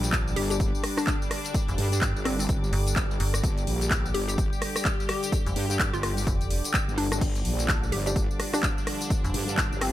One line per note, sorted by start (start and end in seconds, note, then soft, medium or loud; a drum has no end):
0.00 0.35 A#1 medium
0.00 9.92 D3 medium
0.00 7.17 G3 medium
0.00 9.92 G3 medium
0.00 3.42 D4 medium
0.00 9.92 G4 medium
0.00 9.92 D5 medium
0.00 9.92 D6 medium
0.00 closed hi-hat soft
0.00 tambourine medium
0.12 kick loud
0.12 clap loud
0.12 closed hi-hat medium
0.12 tambourine medium
0.27 tambourine soft
0.36 0.72 G1 loud
0.36 0.45 G4 medium
0.36 open hi-hat loud
0.50 0.56 G4 medium
0.50 closed hi-hat soft
0.50 tambourine medium
0.60 kick loud
0.60 closed hi-hat medium
0.60 tambourine medium
0.75 tambourine soft
0.84 cross-stick medium
0.84 open hi-hat loud
0.97 1.14 D4 loud
0.97 cross-stick medium
0.97 open hi-hat medium
0.97 tambourine medium
1.07 kick loud
1.07 clap loud
1.07 closed hi-hat medium
1.07 tambourine medium
1.22 tambourine soft
1.31 cross-stick medium
1.31 open hi-hat loud
1.45 closed hi-hat soft
1.45 tambourine medium
1.54 kick loud
1.54 closed hi-hat medium
1.54 tambourine medium
1.68 1.77 F1 medium
1.68 closed hi-hat soft
1.68 tambourine soft
1.78 2.13 G2 loud
1.78 open hi-hat loud
1.92 closed hi-hat medium
1.92 tambourine medium
2.01 kick loud
2.01 clap loud
2.01 closed hi-hat medium
2.01 tambourine medium
2.16 2.47 G1 loud
2.16 tambourine soft
2.25 2.34 C4 medium
2.25 cross-stick medium
2.25 open hi-hat loud
2.39 2.45 C4 medium
2.39 open hi-hat medium
2.39 tambourine medium
2.49 2.71 G1 loud
2.49 kick loud
2.49 closed hi-hat medium
2.49 tambourine medium
2.64 tambourine soft
2.73 2.95 G1 loud
2.73 open hi-hat loud
2.87 closed hi-hat medium
2.87 tambourine medium
2.96 3.18 G1 loud
2.96 kick loud
2.96 clap loud
2.96 closed hi-hat medium
2.96 tambourine medium
3.11 tambourine soft
3.20 3.42 G1 loud
3.20 open hi-hat loud
3.34 cross-stick medium
3.34 closed hi-hat medium
3.34 tambourine medium
3.43 3.66 G1 loud
3.43 7.20 G4 medium
3.43 kick loud
3.43 closed hi-hat medium
3.43 tambourine medium
3.58 closed hi-hat soft
3.58 tambourine soft
3.67 4.13 A#1 loud
3.67 open hi-hat loud
3.81 closed hi-hat medium
3.81 tambourine medium
3.91 kick loud
3.91 clap loud
3.91 closed hi-hat medium
3.91 tambourine medium
4.06 tambourine soft
4.14 4.50 G1 loud
4.14 4.23 G4 medium
4.14 open hi-hat loud
4.28 4.34 G4 medium
4.28 closed hi-hat medium
4.28 tambourine medium
4.38 kick loud
4.38 closed hi-hat medium
4.38 tambourine medium
4.53 tambourine soft
4.62 cross-stick medium
4.62 open hi-hat loud
4.76 cross-stick medium
4.76 open hi-hat medium
4.76 tambourine medium
4.85 kick loud
4.85 clap loud
4.85 closed hi-hat medium
4.85 tambourine medium
5.00 tambourine soft
5.09 5.56 G4 medium
5.09 cross-stick medium
5.09 open hi-hat loud
5.23 closed hi-hat medium
5.23 tambourine medium
5.32 kick loud
5.32 closed hi-hat medium
5.32 tambourine medium
5.46 5.54 F1 medium
5.46 closed hi-hat soft
5.46 tambourine soft
5.56 5.91 G2 medium
5.56 open hi-hat loud
5.70 closed hi-hat medium
5.70 tambourine medium
5.79 kick loud
5.79 clap loud
5.79 closed hi-hat medium
5.79 tambourine medium
5.93 6.25 G1 loud
5.93 6.00 F4 medium
5.93 closed hi-hat soft
5.93 tambourine soft
6.03 6.12 F4 medium
6.03 cross-stick medium
6.03 open hi-hat loud
6.17 open hi-hat medium
6.17 tambourine medium
6.27 6.62 F1 loud
6.27 kick loud
6.27 closed hi-hat medium
6.27 tambourine medium
6.41 closed hi-hat soft
6.41 tambourine soft
6.50 open hi-hat loud
6.64 closed hi-hat medium
6.64 tambourine medium
6.74 kick loud
6.74 clap loud
6.74 closed hi-hat medium
6.74 tambourine medium
6.88 7.20 G1 medium
6.88 tambourine soft
6.98 7.07 D4 medium
6.98 open hi-hat loud
7.12 7.18 D4 medium
7.12 cross-stick medium
7.12 closed hi-hat medium
7.12 tambourine medium
7.21 7.43 G1 loud
7.21 9.92 F3 medium
7.21 9.92 D4 medium
7.21 kick loud
7.21 closed hi-hat medium
7.21 crash medium
7.21 tambourine medium
7.35 closed hi-hat soft
7.35 tambourine soft
7.45 7.91 A#1 loud
7.45 open hi-hat loud
7.59 closed hi-hat medium
7.59 tambourine medium
7.68 kick loud
7.68 clap loud
7.68 closed hi-hat medium
7.68 tambourine medium
7.83 tambourine soft
7.92 8.28 G1 loud
7.92 8.01 G4 medium
7.92 open hi-hat loud
8.06 8.16 D4 medium
8.06 8.16 G4 medium
8.06 8.12 G4 medium
8.06 8.16 D5 medium
8.06 closed hi-hat soft
8.06 tambourine medium
8.16 kick loud
8.16 closed hi-hat medium
8.16 tambourine medium
8.31 tambourine soft
8.40 cross-stick medium
8.40 open hi-hat loud
8.53 8.63 D4 medium
8.53 8.70 D4 medium
8.53 8.63 G4 medium
8.53 8.63 D5 medium
8.53 cross-stick medium
8.53 open hi-hat medium
8.53 tambourine medium
8.63 kick loud
8.63 clap loud
8.63 closed hi-hat medium
8.63 tambourine medium
8.78 tambourine soft
8.87 cross-stick medium
8.87 open hi-hat loud
9.01 closed hi-hat medium
9.01 tambourine medium
9.10 kick loud
9.10 closed hi-hat medium
9.10 tambourine medium
9.24 9.32 F1 loud
9.24 closed hi-hat soft
9.24 tambourine soft
9.34 9.69 G2 loud
9.34 open hi-hat loud
9.48 closed hi-hat soft
9.48 tambourine medium
9.57 kick loud
9.57 clap loud
9.57 closed hi-hat medium
9.57 tambourine medium
9.72 9.92 G1 medium
9.72 tambourine soft
9.81 9.90 C4 medium
9.81 cross-stick medium
9.81 open hi-hat loud